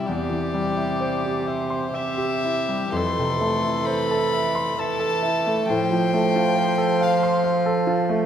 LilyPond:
<<
  \new Staff \with { instrumentName = "Violin" } { \time 3/4 \key f \lydian \tempo 4 = 66 d''4. c''8 e''4 | c'''4 b''4 a''4 | g''4. f''8 r4 | }
  \new Staff \with { instrumentName = "Violin" } { \time 3/4 \key f \lydian g'2 g'4 | a'2 a'4 | c''2. | }
  \new Staff \with { instrumentName = "Grand piano" } { \time 3/4 \key f \lydian e,16 e16 g16 e'16 c''16 g'16 e''16 c'''16 e''16 g'16 e'16 g16 | f,16 c16 a16 e'16 c''16 a'16 e''16 c'''16 e''16 a'16 e'16 a16 | a,16 f16 a16 f'16 c''16 a'16 f''16 c'''16 f''16 a'16 f'16 a16 | }
  \new Staff \with { instrumentName = "Cello" } { \clef bass \time 3/4 \key f \lydian c2 c4 | e2 e4 | f2. | }
>>